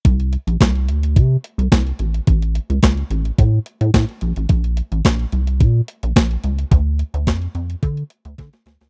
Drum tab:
HH |xxxxxxxxx-xxxxxx|xxxxxxxxx-xxxxxx|xxxxxxxxx-xxxxxx|x-xxxxxxxxxxxxxx|
CP |----x-------x---|----x-------x---|----x-------x---|----x-----------|
SD |----o-------o---|----o-------o---|----o-------o---|----o-------oooo|
BD |o---o---o---o---|o---o---o---o---|o---o---o---o---|o---o---o---o---|